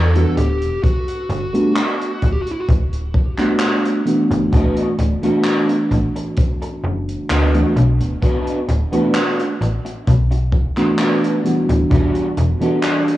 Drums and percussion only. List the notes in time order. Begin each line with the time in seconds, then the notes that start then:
0.15 closed hi-hat
0.37 closed hi-hat
0.62 closed hi-hat
0.83 kick, closed hi-hat
1.08 closed hi-hat
1.29 closed hi-hat
1.54 closed hi-hat
1.75 clap, closed hi-hat
2.01 closed hi-hat
2.22 kick, closed hi-hat
2.47 closed hi-hat
2.69 kick, closed hi-hat
2.92 closed hi-hat
3.14 kick
3.39 clap, closed hi-hat
3.60 clap, closed hi-hat
3.85 closed hi-hat
4.07 closed hi-hat
4.31 closed hi-hat
4.53 kick, closed hi-hat
4.77 closed hi-hat
4.99 closed hi-hat
5.23 closed hi-hat
5.44 clap, closed hi-hat
5.69 closed hi-hat
5.91 kick, closed hi-hat
6.16 closed hi-hat
6.36 kick, closed hi-hat
6.62 closed hi-hat
7.08 closed hi-hat
7.30 clap, closed hi-hat
7.54 closed hi-hat
7.76 closed hi-hat
8.00 closed hi-hat
8.22 kick, closed hi-hat
8.47 closed hi-hat
8.68 closed hi-hat
8.92 closed hi-hat
9.14 clap, closed hi-hat
9.39 closed hi-hat
9.62 closed hi-hat
9.85 closed hi-hat
10.07 kick, closed hi-hat
10.31 closed hi-hat
10.52 kick
10.77 clap, closed hi-hat
10.99 clap, closed hi-hat
11.24 closed hi-hat
11.45 closed hi-hat
11.69 closed hi-hat
11.91 kick, closed hi-hat
12.15 closed hi-hat
12.37 closed hi-hat
12.61 closed hi-hat
12.83 clap, closed hi-hat
13.08 closed hi-hat